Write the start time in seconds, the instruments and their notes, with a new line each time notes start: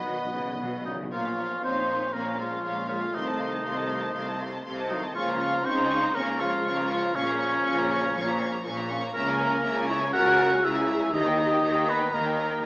Already playing: double bass section B1, harp B2 F#3 F#4 B4 D#5, bassoon B3, french horn section D#4 B4, viola section F#4, oboe B4, violin section B4 D#5
0.02 timpani B2
0.07 timpani B2, cello section D#3, harp B3
0.17 timpani B2
0.24 timpani B2, harp F#3
0.32 timpani B2, cello section C#3
0.39 timpani B2, harp B4
0.47 timpani B2
0.55 timpani B2, cello section B2, harp F#4
0.63 timpani B2
0.71 timpani B2
0.77 timpani B2, harp D#5
0.85 timpani B2, cello section C#3, french horn section D#3, viola section F#3, oboe D#4, flute section D#5
0.94 timpani B2, harp F#4
1.03 timpani B2
1.11 double bass section A#1, harp A#2, cello section A#2, french horn section F3, viola section A#3, violin section A#3 C#5 F5, oboe F4, flute section F5
1.24 violin section C#4 C#5 F5
1.38 harp A#3, violin section A#3 C#5 F5
1.50 violin section C#4 C#5 F5
1.62 double bass section A#1, cello section A#2, violin section A#3 C#5 F5, french horn section C4, viola section D#4, oboe C5, harp C#5, flute section C6
1.76 violin section C#4 C#5 F5
1.89 violin section A#3 C#5 F5, harp A#4
2.01 violin section C#4 C#5 F5
2.13 double bass section A#1, cello section A#2, harp F3, violin section A#3 C#5 F5, french horn section A#3, viola section C#4, oboe A#4, flute section A#5
2.27 violin section C#4 C#5 F5
2.38 french horn section F3, viola section G#3, violin section A#3 C#5 F5, harp A#3, oboe F4, flute section F5
2.51 violin section C#4 C#5 F5
2.64 double bass section A#1, cello section A#2, violin section A#3 C#5 F5
2.76 violin section C#4 C#5 F5
2.88 french horn section F3, viola section G#3, violin section A#3 C#5 F5, oboe F4, harp A#4, flute section F5
3.00 violin section C#4 C#5 F5
3.11 double bass section C2, cello section C3, harp C3, viola section A3, violin section A3 F5 C6, oboe D#4, flute section D#5
3.15 french horn section D#3
3.25 violin section C4 D#5 A5
3.38 violin section A3 F5 C6, harp A3
3.51 violin section C4 D#5 A5
3.64 double bass section C2, cello section C3, violin section A3 F5 C6, harp C5
3.76 violin section C4 D#5 A5
3.88 violin section A3 F5 C6, harp A4
4.00 violin section C4 D#5 A5
4.13 double bass section C2, cello section C3, violin section A3 F5 C6, harp C4
4.26 violin section C4 D#5 A5
4.40 harp A3, violin section A3 F5 C6
4.52 violin section C4 D#5 A5
4.64 double bass section C2, cello section C3, violin section A3 F5 C6, harp C5
4.77 violin section C4 D#5 A5
4.89 french horn section D#3, viola section F#3, violin section A3 F5 C6, oboe D#4, harp A4, flute section D#5
5.03 violin section C4 D#5 A5
5.14 double bass section C#2, cello section C#3, harp C#3, french horn section F3, viola section A#3, violin section C#4 F5 C#6, oboe F4, flute section F5
5.29 violin section A#3 C#5 A#5
5.41 harp A#3, violin section C#4 F5 C#6
5.54 violin section A#3 C#5 A#5
5.64 double bass section C#2, cello section C#3, french horn section C4, viola section D#4, harp A#4, oboe C5, flute section C6, violin section C#6
5.68 violin section C#4 F5
5.78 violin section A#3 C#5 A#5
5.90 violin section C#4 F5 C#6, harp F4
6.02 violin section A#3 C#5 A#5
6.13 double bass section C#2, harp C#3, cello section C#3, french horn section A#3, viola section C#4, violin section C#4 F5 C#6, oboe A#4, flute section A#5
6.27 violin section A#3 C#5 A#5
6.39 french horn section F3, viola section G#3, harp A#3, violin section C#4 F5 C#6, oboe F4, flute section F5
6.52 violin section A#3 C#5 A#5
6.64 double bass section C#2, cello section C#3, violin section C#4 F5 C#6, harp A#4
6.77 violin section A#3 C#5 A#5
6.90 french horn section F3, viola section G#3, violin section C#4 F5 C#6, harp F4, oboe F4, flute section F5
7.02 violin section A#3 C#5 A#5
7.14 double bass section A#1, harp A#2, cello section A#2, french horn section C#3, viola section F3, violin section C#4 F5 C#6, oboe C#4, flute section C#5
7.28 violin section A#3 C#5 A#5
7.40 harp A#3, violin section C#4 F5 C#6
7.53 violin section A#3 C#5 A#5
7.64 double bass section A#1, cello section A#2, violin section C#4 F5 C#6, harp A#4
7.78 violin section A#3 C#5 A#5
7.90 violin section C#4 F5 C#6, harp F4
8.03 violin section A#3 C#5 A#5
8.15 double bass section A#1, cello section A#2, harp F3, violin section C#4 F5 C#6
8.26 violin section A#3 C#5 A#5
8.39 harp A#3, violin section C#4 F5 C#6
8.52 violin section A#3 C#5 A#5
8.65 double bass section A#1, cello section A#2, violin section C#4 F5 C#6, harp A#4
8.77 violin section A#3 C#5 A#5
8.91 violin section C#4 F5 C#6, harp F4
9.02 violin section A#3 C#5 A#5
9.14 double bass section C#2, cello section C#3, harp C#3, french horn section A#3, violin section C#4 E5 A#5, viola section C#4, oboe A#4, flute section A#5
9.27 violin section A#3 C#5 G#5
9.40 harp A#3, violin section C#4 E5 A#5
9.51 violin section A#3 C#5 G#5
9.64 double bass section C#2, cello section C#3, violin section C#4 E5 A#5, harp G#4
9.76 violin section A#3 C#5 G#5
9.87 french horn section C#4, violin section C#4 E5 A#5, viola section E4, harp A#4, oboe C#5, flute section C#6
9.99 violin section A#3 C#5 G#5
10.13 double bass section C#2, harp C#3, cello section C#3, violin section C#4 E5 A#5, french horn section F#4, viola section A#4, oboe F#5, flute section F#6
10.27 violin section A#3 C#5 G#5
10.39 harp A#3, violin section C#4 E5 A#5
10.51 violin section A#3 C#5 G#5
10.63 double bass section C#2, cello section C#3, violin section C#4 E5 A#5, french horn section E4, viola section G#4, oboe E5, flute section E6
10.76 violin section A#3 C#5 G#5
10.87 violin section C#4 E5 A#5, harp A#4
11.01 violin section A#3 C#5 G#5
11.11 double bass section D#2, cello section D#3, timpani D#3, harp D#3, french horn section D#4, violin section D#4 D#5 A#5, viola section G4, oboe D#5, flute section D#6
11.26 violin section A#3 A#4 G5
11.38 violin section D#4 D#5 A#5
11.51 violin section A#3 A#4 G5
11.62 double bass section D#2, cello section D#3, violin section D#4 D#5 A#5, harp A#4
11.74 violin section A#3 A#4 G5
11.86 french horn section B3, viola section D#4, violin section D#4 D#5 A#5, oboe B4, harp D#5, flute section B5
11.98 violin section A#3 A#4 G5
12.10 double bass section D#2, cello section D#3, harp A#3, french horn section A#3, violin section D#4 D#5 A#5, viola section D#4, oboe A#4, flute section A#5
12.26 violin section A#3 A#4 G5
12.37 harp D#4, violin section D#4 D#5 A#5
12.49 violin section A#3 A#4 G5
12.62 double bass section D#2, cello section D#3, violin section D#4 D#5